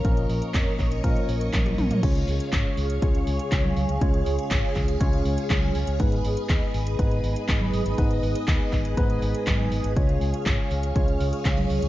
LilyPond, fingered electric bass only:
\new Staff \with { instrumentName = "Fingered electric bass" } { \clef bass \time 4/4 \key cis \mixolydian \tempo 4 = 121 ais,,8 ais,,16 r16 eis,16 r16 ais,,8 ais,16 r16 ais,,8 ais,,8 ais,,16 ais,16 | cis,8 cis,16 r16 gis,,16 r16 cis,8 cis,8 cis,16 r16 cis,8 cis,16 cis,16 | cis,8 cis,16 r16 gis,,16 r16 cis,8 cis,8 cis,16 r16 cis,8 cis,16 cis,16 | gis,,8 gis,,16 r16 dis,16 r16 gis,,8 gis,,8 gis,,16 r16 gis,,8 gis,,16 gis,,16 |
gis,,8 gis,,16 r16 dis,16 r16 gis,,8 gis,,8 gis,,16 r16 gis,,8 gis,,16 gis,,16 | cis,8 cis,16 r16 gis,,16 r16 cis,8 cis,8 cis,16 r16 cis,8 cis,16 cis,16 | }